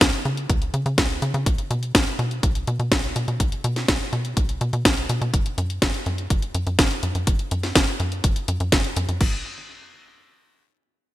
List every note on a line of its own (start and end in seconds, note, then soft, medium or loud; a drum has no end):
0.01 0.12 C#2 medium
0.01 kick loud
0.01 snare loud
0.01 closed hi-hat medium
0.13 closed hi-hat soft
0.25 0.47 C#3 medium
0.25 closed hi-hat soft
0.37 closed hi-hat soft
0.50 0.71 C#2 medium
0.50 kick loud
0.50 closed hi-hat medium
0.62 closed hi-hat soft
0.74 0.85 C#3 medium
0.74 closed hi-hat medium
0.86 0.97 C#3 medium
0.86 closed hi-hat soft
0.98 1.20 C#2 medium
0.98 kick loud
0.98 snare loud
0.98 closed hi-hat medium
1.10 closed hi-hat soft
1.22 1.33 C#3 medium
1.22 closed hi-hat medium
1.34 1.45 C#3 loud
1.34 closed hi-hat soft
1.46 1.57 B1 loud
1.46 kick loud
1.46 closed hi-hat medium
1.58 closed hi-hat soft
1.71 1.92 B2 medium
1.71 closed hi-hat medium
1.83 closed hi-hat soft
1.95 2.06 B1 medium
1.95 kick loud
1.95 snare loud
1.95 closed hi-hat medium
2.07 closed hi-hat soft
2.19 2.41 B2 medium
2.19 closed hi-hat soft
2.31 closed hi-hat soft
2.43 2.65 B1 loud
2.43 kick loud
2.43 closed hi-hat medium
2.55 closed hi-hat soft
2.67 2.78 B2 medium
2.67 closed hi-hat medium
2.80 2.90 B2 medium
2.80 closed hi-hat soft
2.92 3.13 B1 medium
2.92 kick loud
2.92 snare loud
2.92 closed hi-hat medium
3.04 closed hi-hat soft
3.16 3.27 B2 medium
3.16 closed hi-hat medium
3.28 3.39 B2 medium
3.28 closed hi-hat soft
3.40 3.51 B1 loud
3.40 kick loud
3.40 closed hi-hat medium
3.52 closed hi-hat soft
3.64 3.86 B2 loud
3.64 closed hi-hat medium
3.76 snare soft
3.76 closed hi-hat soft
3.88 3.99 B1 medium
3.88 kick loud
3.88 snare loud
3.88 closed hi-hat medium
4.01 closed hi-hat soft
4.13 4.34 B2 medium
4.13 closed hi-hat soft
4.25 closed hi-hat soft
4.37 4.58 B1 medium
4.37 kick loud
4.37 closed hi-hat medium
4.49 closed hi-hat soft
4.61 4.72 B2 medium
4.61 closed hi-hat medium
4.73 4.84 B2 loud
4.73 closed hi-hat soft
4.85 5.07 B1 loud
4.85 kick loud
4.85 snare loud
4.85 closed hi-hat medium
4.97 closed hi-hat soft
5.09 5.20 B2 loud
5.09 closed hi-hat medium
5.21 5.32 B2 medium
5.21 closed hi-hat soft
5.34 5.44 F#1 loud
5.34 kick loud
5.34 closed hi-hat medium
5.46 closed hi-hat soft
5.58 5.79 F#2 loud
5.58 closed hi-hat medium
5.70 closed hi-hat soft
5.82 5.93 F#1 medium
5.82 kick loud
5.82 snare loud
5.82 closed hi-hat loud
5.94 closed hi-hat soft
6.06 6.28 F#2 medium
6.06 closed hi-hat soft
6.18 closed hi-hat soft
6.30 6.52 F#1 medium
6.30 kick loud
6.30 closed hi-hat medium
6.42 closed hi-hat soft
6.54 6.65 F#2 medium
6.54 closed hi-hat medium
6.67 6.77 F#2 medium
6.67 closed hi-hat soft
6.79 7.00 F#1 medium
6.79 kick loud
6.79 snare loud
6.79 closed hi-hat loud
6.91 closed hi-hat soft
7.03 7.14 F#2 medium
7.03 closed hi-hat medium
7.15 7.26 F#2 medium
7.15 closed hi-hat soft
7.27 7.38 F#1 loud
7.27 kick loud
7.27 closed hi-hat loud
7.39 closed hi-hat soft
7.51 7.73 F#2 loud
7.51 closed hi-hat medium
7.63 snare soft
7.63 closed hi-hat soft
7.75 7.86 F#1 medium
7.75 kick loud
7.75 snare loud
7.75 closed hi-hat loud
7.88 closed hi-hat soft
8.00 8.21 F#2 medium
8.00 closed hi-hat soft
8.12 closed hi-hat soft
8.24 8.35 F#1 medium
8.24 kick loud
8.24 closed hi-hat medium
8.36 closed hi-hat soft
8.48 8.59 F#2 loud
8.48 closed hi-hat medium
8.60 8.71 F#2 loud
8.60 closed hi-hat soft
8.72 8.94 F#1 loud
8.72 kick loud
8.72 snare loud
8.72 closed hi-hat loud
8.84 closed hi-hat soft
8.96 9.07 F#2 loud
8.96 closed hi-hat medium
9.09 9.19 F#2 medium
9.09 closed hi-hat soft
9.21 9.43 G#1 medium
9.21 kick loud
9.21 crash medium